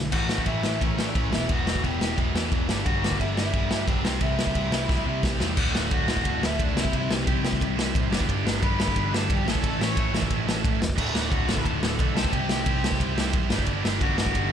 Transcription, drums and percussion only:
0.12 kick, crash
0.29 snare
0.38 kick
0.46 kick, crash
0.63 snare
0.81 kick, crash
0.99 snare
1.15 kick, crash
1.33 snare
1.49 kick, crash
1.67 snare
1.75 kick
1.84 kick, crash
2.01 snare
2.18 kick, crash
2.36 snare
2.52 kick, crash
2.69 snare
2.86 kick, crash
3.04 snare
3.12 kick
3.20 kick, crash
3.37 snare
3.53 kick, crash
3.71 snare
3.88 kick, crash
4.05 snare
4.21 kick, crash
4.39 snare
4.47 kick
4.55 kick, crash
4.72 snare
4.89 kick, snare
5.23 kick, snare
5.40 snare
5.57 kick, crash
5.75 snare
5.91 kick, ride
6.08 snare
6.17 kick
6.25 kick, ride
6.43 snare
6.60 kick, ride
6.77 snare
6.85 kick
6.93 kick, ride
7.11 snare
7.27 kick, ride
7.45 snare
7.53 kick
7.61 kick, ride
7.79 snare
7.95 kick, ride
8.13 snare
8.20 kick
8.29 kick, ride
8.47 snare
8.63 kick, ride
8.80 snare
8.88 kick
8.96 kick, ride
9.14 snare
9.30 kick, ride
9.48 snare
9.55 kick
9.64 kick, ride
9.81 snare
9.97 kick, ride
10.15 snare
10.22 kick
10.30 kick, ride
10.49 snare
10.65 kick, ride
10.82 snare
10.90 kick
10.98 kick, crash
11.15 snare
11.32 kick, ride
11.49 snare
11.57 kick
11.65 kick, ride
11.83 snare
11.99 kick, ride
12.17 snare
12.25 kick
12.33 kick, ride
12.49 snare
12.66 kick, ride
12.84 snare
12.92 kick
13.00 kick, ride
13.18 snare
13.33 kick, ride
13.50 snare
13.59 kick
13.66 kick, ride
13.85 snare
14.01 kick, ride
14.18 snare
14.26 kick
14.35 kick, ride

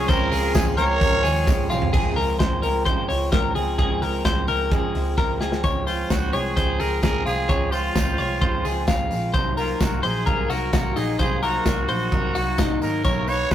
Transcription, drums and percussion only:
0.09 kick, hi-hat pedal, open hi-hat, tambourine
0.32 hi-hat pedal, open hi-hat, tambourine
0.55 kick, snare, hi-hat pedal, open hi-hat, tambourine
0.78 hi-hat pedal, open hi-hat, tambourine
1.01 kick, hi-hat pedal, open hi-hat, tambourine
1.25 hi-hat pedal, open hi-hat, tambourine
1.47 kick, snare, tambourine
1.70 mid tom, tambourine
1.82 floor tom
1.94 kick, crash
2.17 open hi-hat
2.40 kick, snare, closed hi-hat
2.63 open hi-hat
2.86 kick, closed hi-hat
3.10 open hi-hat
3.32 kick, snare, closed hi-hat
3.56 open hi-hat
3.79 kick, closed hi-hat
4.02 open hi-hat
4.25 kick, snare, closed hi-hat
4.48 open hi-hat
4.72 kick, closed hi-hat
4.95 open hi-hat
5.18 kick, snare
5.41 snare
5.52 snare
5.64 kick, closed hi-hat, tambourine
5.87 open hi-hat, tambourine
6.10 kick, snare, closed hi-hat, tambourine
6.33 open hi-hat, tambourine
6.57 kick, closed hi-hat
6.80 open hi-hat, tambourine
7.03 kick, snare, closed hi-hat, tambourine
7.26 open hi-hat, tambourine
7.49 kick, closed hi-hat, tambourine
7.72 open hi-hat, tambourine
7.95 kick, snare, closed hi-hat, tambourine
8.18 open hi-hat, tambourine
8.42 kick, closed hi-hat
8.65 open hi-hat, tambourine
8.87 kick, snare, closed hi-hat, tambourine
9.11 open hi-hat, tambourine
9.34 kick, closed hi-hat, tambourine
9.57 open hi-hat, tambourine
9.81 kick, snare, closed hi-hat, tambourine
10.04 open hi-hat
10.27 kick, closed hi-hat
10.50 open hi-hat, tambourine
10.73 kick, snare, closed hi-hat, tambourine
10.96 open hi-hat, tambourine
11.19 kick, closed hi-hat, tambourine
11.43 open hi-hat, tambourine
11.66 kick, snare, closed hi-hat, tambourine
11.88 open hi-hat
12.12 kick, closed hi-hat, tambourine
12.35 open hi-hat, tambourine
12.58 kick, snare, closed hi-hat, tambourine
12.82 open hi-hat, tambourine
13.04 kick, closed hi-hat, tambourine
13.28 open hi-hat, tambourine
13.51 kick, snare, closed hi-hat, tambourine

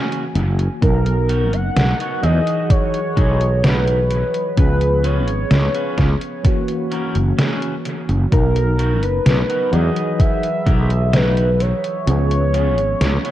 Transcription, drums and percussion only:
0.12 closed hi-hat
0.36 closed hi-hat
0.59 closed hi-hat
0.82 kick, closed hi-hat
1.06 closed hi-hat
1.29 closed hi-hat
1.53 closed hi-hat
1.76 snare, closed hi-hat
2.00 closed hi-hat
2.23 closed hi-hat
2.47 closed hi-hat
2.70 kick, closed hi-hat
2.94 closed hi-hat
3.17 kick, closed hi-hat
3.41 closed hi-hat
3.64 snare, closed hi-hat
3.87 closed hi-hat
4.10 closed hi-hat
4.34 closed hi-hat
4.57 kick, closed hi-hat
4.81 closed hi-hat
5.04 closed hi-hat
5.28 closed hi-hat
5.51 snare, closed hi-hat
5.75 closed hi-hat
5.98 kick, snare, closed hi-hat
6.22 closed hi-hat
6.45 kick, closed hi-hat
6.68 closed hi-hat
6.92 closed hi-hat
7.15 closed hi-hat
7.39 snare, closed hi-hat
7.62 closed hi-hat
7.85 closed hi-hat
8.09 closed hi-hat
8.32 kick, closed hi-hat
8.56 closed hi-hat
8.79 closed hi-hat
9.03 closed hi-hat
9.26 snare, closed hi-hat
9.50 closed hi-hat
9.73 closed hi-hat
9.97 closed hi-hat
10.20 kick, closed hi-hat
10.43 closed hi-hat
10.67 kick, closed hi-hat
10.90 closed hi-hat
11.14 snare, closed hi-hat
11.37 closed hi-hat
11.60 closed hi-hat
11.84 closed hi-hat
12.07 closed hi-hat
12.31 closed hi-hat
12.54 closed hi-hat
12.78 closed hi-hat
13.01 snare, closed hi-hat
13.25 closed hi-hat

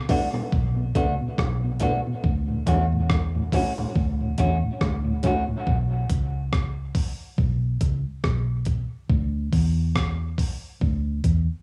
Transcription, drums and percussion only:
0.09 kick, open hi-hat, low bongo
0.34 high bongo
0.52 kick
0.95 kick, closed hi-hat
1.38 kick, cross-stick, high bongo
1.80 kick, closed hi-hat, low bongo
2.24 kick
2.66 kick, closed hi-hat, high bongo
3.09 kick, cross-stick, high bongo
3.52 kick, open hi-hat, low bongo
3.78 high bongo
3.96 kick
4.38 kick, closed hi-hat
4.81 kick, cross-stick, high bongo
5.23 kick, closed hi-hat, low bongo
5.67 kick
6.10 kick, closed hi-hat
6.53 kick, cross-stick
6.95 kick, open hi-hat
7.38 kick
7.81 kick, closed hi-hat
8.24 kick, cross-stick
8.65 kick, closed hi-hat
9.09 kick
9.53 kick, open hi-hat
9.96 kick, cross-stick
10.38 kick, open hi-hat
10.81 kick
11.24 kick, closed hi-hat

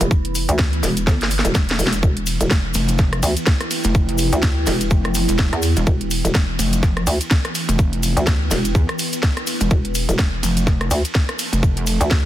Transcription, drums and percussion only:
0.01 closed hi-hat, cabasa
0.11 kick, cabasa
0.25 closed hi-hat
0.35 open hi-hat, cabasa
0.49 closed hi-hat, cabasa
0.58 kick, snare, cabasa
0.73 closed hi-hat
0.83 snare, open hi-hat, cabasa
0.97 closed hi-hat, cabasa
1.07 kick, snare, cabasa
1.21 snare, closed hi-hat
1.31 open hi-hat, cabasa
1.39 snare
1.45 closed hi-hat, cabasa
1.55 kick, snare, cabasa
1.69 snare, closed hi-hat
1.79 open hi-hat, cabasa
1.87 snare
1.93 closed hi-hat, cabasa
2.03 kick, cabasa
2.17 closed hi-hat
2.26 open hi-hat, ride, cabasa
2.40 closed hi-hat, cabasa
2.51 kick, snare, cabasa
2.74 open hi-hat, ride, cabasa
2.88 closed hi-hat, cabasa
2.98 kick, snare, cabasa
3.13 cross-stick, closed hi-hat
3.23 open hi-hat, ride, cabasa
3.37 closed hi-hat, cabasa
3.46 kick, snare, cabasa
3.61 cross-stick, closed hi-hat
3.71 open hi-hat, ride, cabasa
3.84 closed hi-hat, cabasa
3.95 kick, cabasa
4.09 closed hi-hat
4.18 open hi-hat, ride, cabasa
4.32 closed hi-hat, cabasa
4.43 kick, snare, cabasa
4.67 snare, open hi-hat, ride, cabasa
4.81 closed hi-hat, cabasa
4.91 kick, cabasa
5.05 cross-stick, closed hi-hat
5.14 open hi-hat, ride, cabasa
5.28 closed hi-hat, cabasa
5.38 kick, snare, cabasa
5.53 cross-stick, closed hi-hat
5.62 open hi-hat, ride, cabasa
5.77 closed hi-hat, cabasa
5.87 kick, cabasa
6.01 closed hi-hat
6.11 open hi-hat, ride, cabasa
6.25 closed hi-hat, cabasa
6.35 kick, snare, cabasa
6.59 open hi-hat, ride, cabasa
6.73 closed hi-hat, cabasa
6.83 kick, snare, cabasa
6.97 cross-stick, closed hi-hat
7.07 open hi-hat, ride, cabasa
7.21 closed hi-hat, cabasa
7.31 kick, snare, cabasa
7.45 cross-stick, closed hi-hat
7.55 open hi-hat, ride, cabasa
7.69 closed hi-hat, cabasa
7.79 kick, cabasa
7.93 closed hi-hat
8.03 open hi-hat, ride, cabasa
8.17 closed hi-hat, cabasa
8.27 kick, snare, cabasa
8.51 snare, open hi-hat, ride, cabasa
8.65 closed hi-hat, cabasa
8.75 kick, cabasa
8.89 cross-stick, closed hi-hat
8.99 open hi-hat, ride, cabasa
9.13 closed hi-hat, cabasa
9.23 kick, snare, cabasa
9.37 cross-stick, closed hi-hat
9.47 open hi-hat, ride, cabasa
9.60 closed hi-hat, cabasa
9.71 kick, cabasa
9.85 closed hi-hat
9.95 open hi-hat, ride, cabasa
10.09 closed hi-hat, cabasa
10.19 kick, snare, cabasa
10.43 open hi-hat, ride, cabasa
10.57 closed hi-hat, cabasa
10.67 kick, snare, cabasa
10.81 cross-stick, closed hi-hat
10.91 open hi-hat, ride, cabasa
11.05 closed hi-hat, cabasa
11.15 kick, snare, cabasa
11.29 cross-stick, closed hi-hat
11.39 open hi-hat, ride, cabasa
11.53 closed hi-hat, cabasa
11.63 kick, cabasa
11.77 closed hi-hat
11.87 open hi-hat, ride, cabasa
12.01 closed hi-hat, cabasa
12.11 kick, snare, cabasa

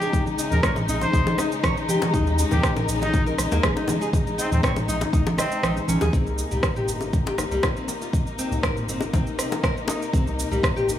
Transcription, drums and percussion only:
0.02 shaker
0.13 kick, low conga, shaker
0.26 muted conga, shaker
0.39 shaker
0.51 mid tom, high conga, shaker
0.63 kick, cross-stick, muted conga, shaker
0.76 mid tom, high bongo, high conga, shaker
0.89 shaker
1.01 high bongo, muted conga, shaker
1.13 kick, shaker
1.26 high bongo, high conga, shaker
1.38 cross-stick, low bongo, muted conga, shaker
1.52 shaker
1.64 kick, cross-stick, high conga, shaker
1.77 muted conga, shaker
1.89 high conga, shaker
2.02 high bongo, low bongo, high conga, shaker
2.14 kick, low conga, shaker
2.27 muted conga, shaker
2.39 shaker
2.51 mid tom, low bongo, high conga, shaker
2.63 kick, cross-stick, shaker
2.76 mid tom, high bongo, high conga, shaker
2.89 shaker
3.01 high bongo, muted conga, shaker
3.14 kick, high conga, shaker
3.27 shaker
3.38 cross-stick, muted conga, high conga, shaker
3.52 low bongo, shaker
3.63 kick, cross-stick, high conga, low conga, shaker
3.77 high bongo, muted conga, shaker
3.88 low bongo, high conga, low conga, shaker
4.02 shaker
4.13 kick, low conga, shaker
4.27 muted conga, shaker
4.39 shaker
4.51 mid tom, high conga, shaker
4.63 kick, cross-stick, muted conga, shaker
4.76 mid tom, high bongo, high conga, shaker
4.89 shaker
5.01 high bongo, muted conga, shaker
5.13 kick, shaker
5.27 high bongo, high conga, shaker
5.37 cross-stick, low bongo, muted conga, low conga, shaker
5.52 shaker
5.63 cross-stick, high conga, shaker
5.77 muted conga, shaker
5.88 high conga, shaker
6.01 high bongo, low bongo, high conga, shaker
6.13 kick, shaker
6.27 shaker
6.38 shaker
6.51 mid tom, shaker
6.63 kick, cross-stick, shaker
6.76 mid tom, shaker
6.88 shaker
7.01 high bongo, shaker
7.13 kick, shaker
7.27 high bongo, shaker
7.38 cross-stick, low bongo, shaker
7.52 shaker
7.63 kick, cross-stick, low bongo, shaker
7.77 shaker
7.88 low bongo, shaker
8.02 shaker
8.13 kick, shaker
8.27 shaker
8.39 shaker
8.52 mid tom, shaker
8.63 kick, cross-stick, shaker
8.77 mid tom, shaker
8.89 shaker
9.01 high bongo, shaker
9.13 kick, low bongo, shaker
9.27 shaker
9.39 cross-stick, shaker
9.52 high bongo, low bongo, shaker
9.63 kick, cross-stick, shaker
9.77 shaker
9.88 high bongo, shaker
10.02 shaker
10.13 kick, shaker
10.27 shaker
10.39 shaker
10.52 mid tom, shaker
10.63 kick, cross-stick, shaker
10.77 mid tom, shaker
10.89 shaker

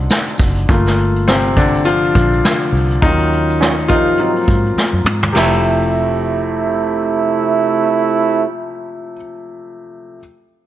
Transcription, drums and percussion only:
0.10 snare, tambourine
0.27 closed hi-hat
0.38 kick, open hi-hat, tambourine
0.57 closed hi-hat
0.69 kick, closed hi-hat
0.86 snare, closed hi-hat
0.99 closed hi-hat
1.16 closed hi-hat
1.28 snare
1.45 closed hi-hat
1.57 kick, closed hi-hat
1.74 closed hi-hat
1.85 closed hi-hat
2.03 closed hi-hat
2.15 kick, closed hi-hat
2.33 closed hi-hat
2.45 snare
2.61 closed hi-hat
2.74 open hi-hat
2.91 closed hi-hat
3.02 kick, closed hi-hat
3.19 closed hi-hat
3.33 closed hi-hat
3.50 closed hi-hat
3.62 snare
3.78 closed hi-hat
3.89 kick, closed hi-hat
4.07 closed hi-hat
4.17 closed hi-hat
4.36 closed hi-hat
4.47 kick, closed hi-hat
4.65 closed hi-hat
4.78 snare
5.06 mid tom
5.23 floor tom
5.35 snare, crash

